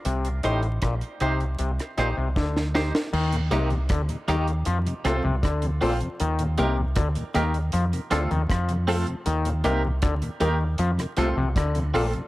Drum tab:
CC |----------------|x---------------|----------------|----------------|
HH |xxxxxxxxxxx-----|-xxxxxxxxxx-xxox|xxx-xxxxxxxxxxox|xxx-xxx-xxx-xxox|
SD |----r----rr-oooo|----r-----r-r---|----r-----r-r---|----r----r--r---|
BD |----o-------o---|----o-------o---|----o-------o---|----o-------o---|